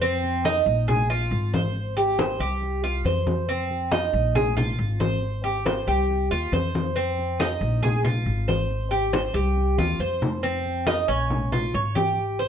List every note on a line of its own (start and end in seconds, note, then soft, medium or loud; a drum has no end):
0.00 0.60 F2 medium
0.00 0.44 C4 medium
0.00 high conga soft
0.24 high conga soft
0.45 0.87 D#4 medium
0.45 high conga medium
0.66 1.27 A#1 medium
0.66 high conga soft
0.88 1.09 G#4 medium
0.88 high conga soft
0.88 low conga medium
1.10 1.52 F4 medium
1.10 high conga soft
1.31 2.34 G#1 loud
1.31 high conga soft
1.54 1.96 C5 medium
1.54 high conga medium
1.76 high conga soft
1.97 2.18 G4 medium
1.97 high conga soft
2.19 2.40 C5 medium
2.19 high conga medium
2.40 3.01 C2 medium
2.40 2.82 G4 medium
2.40 high conga soft
2.62 high conga soft
2.84 3.05 F4 medium
2.84 high conga soft
3.04 4.07 F2 medium
3.04 3.48 C5 medium
3.04 high conga medium
3.27 high conga medium
3.49 3.91 C4 medium
3.49 high conga soft
3.70 high conga soft
3.92 4.34 D#4 medium
3.92 high conga loud
4.13 4.75 A#1 medium
4.13 high conga soft
4.35 4.56 G#4 medium
4.35 high conga soft
4.35 low conga medium
4.57 4.99 F4 medium
4.57 high conga soft
4.57 low conga medium
4.79 5.81 G#1 loud
4.79 high conga soft
5.00 5.43 C5 medium
5.00 high conga medium
5.22 high conga soft
5.44 5.65 G4 medium
5.44 high conga soft
5.66 5.87 C5 medium
5.66 high conga medium
5.87 6.28 C2 medium
5.87 6.30 G4 medium
5.87 high conga soft
6.09 high conga soft
6.31 6.51 D#2 medium
6.31 6.52 F4 medium
6.31 high conga soft
6.52 7.55 F2 medium
6.52 6.95 C5 medium
6.52 high conga medium
6.75 high conga medium
6.96 7.38 C4 medium
6.96 high conga soft
7.19 high conga soft
7.40 7.82 D#4 medium
7.40 high conga loud
7.61 8.22 A#1 loud
7.61 high conga soft
7.83 8.04 G#4 medium
7.83 high conga soft
7.83 low conga medium
8.04 8.47 F4 medium
8.04 high conga soft
8.04 low conga medium
8.26 9.29 G#1 medium
8.26 high conga soft
8.48 8.90 C5 medium
8.48 high conga medium
8.70 high conga soft
8.91 9.12 G4 medium
8.91 high conga soft
9.13 9.34 C5 medium
9.13 high conga medium
9.34 9.75 C2 medium
9.34 9.77 G4 medium
9.34 high conga soft
9.57 high conga soft
9.78 9.99 D#2 medium
9.78 10.00 F4 medium
9.78 high conga loud
9.99 11.02 F2 medium
9.99 10.42 C5 medium
10.22 low conga medium
10.43 10.85 C4 medium
10.43 high conga soft
10.66 high conga soft
10.87 11.08 D#4 medium
10.87 high conga loud
11.08 11.70 A#1 medium
11.08 11.51 C#4 medium
11.08 high conga soft
11.30 high conga soft
11.30 low conga medium
11.52 11.73 F4 medium
11.52 high conga soft
11.52 low conga medium
11.74 12.48 G#1 medium
11.74 11.95 C#5 medium
11.74 high conga soft
11.95 12.38 G4 medium
11.95 high conga medium
12.18 high conga soft
12.39 12.48 C5 medium
12.39 high conga soft